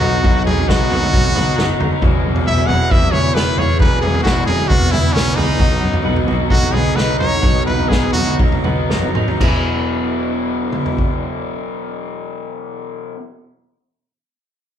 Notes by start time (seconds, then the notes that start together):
Already playing: B2 F#3 B3 D#4 F#4
0.01 B1 D#4, floor tom
0.23 B1 B2 F#3 B3 D#4 F#4, kick, floor tom
0.46 B1 B3 D#4 F#4 G#4, floor tom
0.58 floor tom
0.68 B1 B2 F#3 B3 D#4 F#4, kick, snare
0.80 floor tom
0.91 B1 F#3 B3 D#4 F#4, floor tom
1.03 mid tom
1.13 B1 F#3, kick, floor tom
1.24 floor tom
1.36 B1 B3 D#4 F#4, floor tom, mid tom
1.58 F#1 F#3 B3 D#4 F#4, snare, mid tom
1.80 D#2 D#4, floor tom, mid tom
2.02 E1 E2 B2 E3 F#3 B3 E4 G#4, kick, floor tom
2.25 B1 E3 B3 E4 G#4
2.36 floor tom
2.46 E1 E2 B2 E3 B3 E4 G#4 E5
2.57 floor tom
2.66 E1 E3 F#3 B3 E4 G#4 F#5, floor tom
2.91 E1 B3 E5, kick, floor tom
3.02 floor tom
3.11 E1 E3 B3 E4 G#4 C#5, mid tom
3.34 E1 E3 B3 E4 G#4 B4, snare
3.57 E1 G#4 C#5, floor tom
3.79 E1 E2 B2 E3 F#3 B3 E4 G#4 B4, kick, floor tom
4.01 E1 E3 B3 E4 G#4, floor tom
4.14 floor tom
4.23 E1 E2 B2 E3 B3 E4 F#4 G#4, kick, snare
4.37 floor tom
4.46 E1 F#3 B3 E4 G#4, floor tom
4.50 E3
4.59 mid tom
4.68 E1 B3 F#4, kick, floor tom
4.82 floor tom
4.91 E1 E3 B3 E4 G#4, floor tom, mid tom
5.13 B1 E3 B3 C#4 E4 G#4, snare, mid tom
5.36 C#2 D#4 G#4, floor tom, mid tom
5.58 B1 B2 F#3 B3 D#4 F#4, kick, floor tom
5.81 F#2 B3 D#4 F#4
5.93 floor tom
6.03 B1 B2 F#3 B3 D#4 F#4
6.16 floor tom
6.25 B1 F#3 B3 D#4 F#4, floor tom
6.49 B1 F#3 F#4, kick, floor tom
6.63 floor tom
6.71 B1 B3 D#4 F#4 G#4, mid tom
6.94 B1 F#3 B3 D#4 F#4 B4
6.98 snare
7.19 B1 D#4 C#5, floor tom
7.41 B1 B2 F#3 B3 D#4 F#4, kick, floor tom
7.66 B1 B3 D#4 F#4 B4, floor tom
7.79 floor tom
7.88 B1 B2 F#3 B3 D#4 F#4 G#4, kick, snare
8.03 floor tom
8.13 B1 F#3 D#4 F#4, floor tom
8.18 B3
8.27 mid tom
8.39 B1 F#3, kick, floor tom
8.52 floor tom
8.63 B1 B3 D#4 F#4, floor tom, mid tom
8.88 F#1 F#3 B3 D#4 F#4, snare
9.02 high tom
9.14 D#2 D#4, mid tom
9.28 floor tom
9.39 E1 E2 B2 E3 F#3 G#3 B3, kick, crash
9.43 E4 G#4
10.72 mid tom
10.86 floor tom
10.98 kick